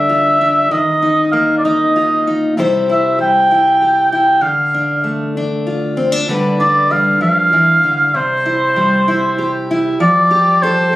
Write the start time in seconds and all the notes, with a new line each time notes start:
Already playing: D3 G3 D4 E5
0.09 F4
0.41 D4
0.71 D#3 D#5
1.02 D#4
1.32 A#3 F5
1.58 D5
1.64 D#4 D#5
1.96 F4
2.27 D#4
2.57 C3 G3 E4 G4 C5
2.89 E4 E5
3.19 G3 G5
3.51 E4
3.82 G4
4.11 E4 G5
4.41 D3 F5
4.74 D4
5.04 A3
5.37 D4
5.67 F4
5.97 C4
6.12 D4
6.28 D3 G3 D4 B4
6.60 D4 D5
6.91 G3 F5
7.21 F3 F5
7.53 E3
7.84 D3
8.14 C3 C5
8.46 E4
8.76 G3
9.08 E4
9.38 G4
9.71 E4
10.00 F3 D5
10.31 G4
10.62 A4 C5